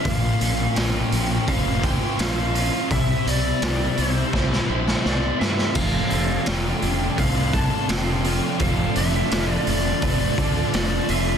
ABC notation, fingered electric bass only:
X:1
M:4/4
L:1/8
Q:1/4=84
K:F
V:1 name="Fingered electric bass" clef=bass
B,,, B,,, B,,, B,,, F,,,2 B,,,2 | C,, C,, C,, C,, C,, B,,, C,, G,, | F,,, F,,, F,,, F,,, C,,2 F,,,2 | F,,, F,,, F,,, F,,, F,,, D,, F,,, F,,, |]